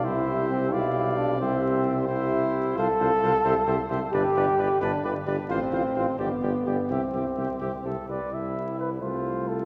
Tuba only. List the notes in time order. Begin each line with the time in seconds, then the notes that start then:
0.05 C2
0.73 B1
1.40 C2
2.77 C2
3.01 C2
3.23 C2
3.45 C2
3.67 C2
3.90 C2
4.13 G1
4.36 G1
4.58 G1
4.81 G1
5.04 G1
5.27 G1
5.50 A1
5.72 A1
5.96 A1
6.19 G1
6.42 G1
6.66 G1
6.90 C2
7.14 C2
7.38 C2
7.61 C2
7.85 C2
8.09 C2
8.33 C2
9.02 C2